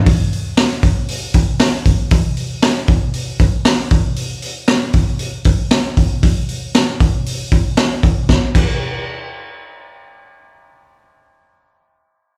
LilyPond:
\new DrumStaff \with { instrumentName = "Drums" } \drummode { \time 4/4 \tempo 4 = 116 <hho bd>8 hho8 <hho sn>8 <hho bd>8 hho8 <hho bd>8 <hho sn>8 <hho bd>8 | <hho bd>8 hho8 <hho sn>8 <hho bd>8 hho8 <hho bd>8 <hho sn>8 <hho bd>8 | hho8 hho8 <hho sn>8 <hho bd>8 hho8 <hho bd>8 <hho sn>8 <hho bd>8 | <hho bd>8 hho8 <hho sn>8 <hho bd>8 hho8 <hho bd>8 <hho sn>8 <hho bd>8 |
<bd sn>8 <cymc bd>8 r4 r4 r4 | r4 r4 r4 r4 | }